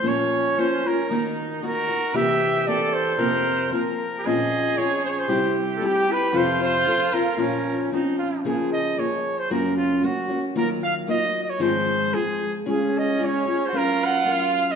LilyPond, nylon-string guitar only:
\new Staff \with { instrumentName = "Nylon-string guitar" } { \time 2/4 \key bes \minor \tempo 4 = 114 <bes, f bes des' f'>4 <f bes des' f'>8 <bes des' f'>8 | <ees bes ees' ges'>4 <ees bes ees' ges'>8 <bes ees' ges'>8 | <c e bes c' g'>4 <e bes c' g'>4 | <f, c f bes c' f'>4 <f bes c' f'>4 |
<bes, f c' des' f'>4 <f c' des' f'>4 | <c g c' e' g'>4 <g c' e' g'>8 <c' e'>8 | <f, c f c' f' a'>4 <f c' f' a'>8 <f c' f' a'>8 | <bes, f des' f'>4 <f c' des' f'>4 |
\key des \major <des f bes f' aes'>4 <f bes f' aes'>4 | <ges, des ges bes des' ges'>4 <ges bes des' ges'>8 <ges bes des' ges'>8 | <ees ges bes ees' f'>4 <ges bes ees' f'>4 | <aes, ees f aes c' f'>4 <f aes c' f'>4 |
<des aes des' f' aes'>4 <aes des' f' aes'>8 <des' f' aes'>8 | <ges des' bes'>4 <ges des' bes'>4 | }